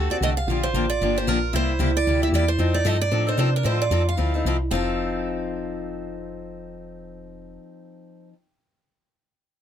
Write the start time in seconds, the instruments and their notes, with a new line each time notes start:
Already playing: steel-string acoustic guitar F#4
0.10 fm bass D2, steel-string acoustic guitar C4 F#4 A4 D5
0.21 fm bass C2, steel-string acoustic guitar D3 A3 C4 F#4 A4 D#5
0.37 steel-string acoustic guitar F5
0.47 fm bass A#1, steel-string acoustic guitar D3 F3 A#3 D4 F4 G4
0.63 steel-string acoustic guitar C5
0.74 fm bass A1, steel-string acoustic guitar D3 F3 A#3 D4 G4
0.90 steel-string acoustic guitar D5
1.01 fm bass G1, steel-string acoustic guitar D3 F3 A#3 D4 G4
1.16 steel-string acoustic guitar A#3 D4 G4 C5
1.27 fm bass A#1, steel-string acoustic guitar D3 F3 A#3 D4 G4 A#4
1.53 fm bass C2, steel-string acoustic guitar C3 G3 A#3 E4 G4 C5
1.79 fm bass C#2, steel-string acoustic guitar C3 G3 A#3 E4 G4
1.97 steel-string acoustic guitar D5
2.07 fm bass D2, steel-string acoustic guitar C3 G3 A#3 E4 G4
2.22 steel-string acoustic guitar A#3 E4 G4 E5
2.33 fm bass E2, steel-string acoustic guitar C3 G3 A#3 E4 G4 D5
2.48 steel-string acoustic guitar C5
2.59 fm bass F2, steel-string acoustic guitar F3 C4 D#4 A4
2.74 steel-string acoustic guitar D5
2.85 fm bass G2, steel-string acoustic guitar F3 C4 D#4 A4 D#5
3.01 steel-string acoustic guitar D5
3.11 fm bass A2, steel-string acoustic guitar F3 C4 D4 D#4 A4
3.27 steel-string acoustic guitar C4 D#4 A4 C5
3.37 fm bass C3, steel-string acoustic guitar F3 C4 D#4 A4 C5
3.56 steel-string acoustic guitar A#4
3.63 fm bass A2, steel-string acoustic guitar F3 C4 D#4 F4 A4 C5
3.82 steel-string acoustic guitar D5
3.91 fm bass F2, steel-string acoustic guitar F3 C4 D#4 A4
4.09 steel-string acoustic guitar F5
4.17 fm bass D2, steel-string acoustic guitar F3 C4 D#4 E4 A4
4.34 steel-string acoustic guitar C4 D#4 A4
4.45 fm bass C2, steel-string acoustic guitar F3 C4 D#4 A4
4.71 fm bass F1, steel-string acoustic guitar F3 C4 D#4 A4 F5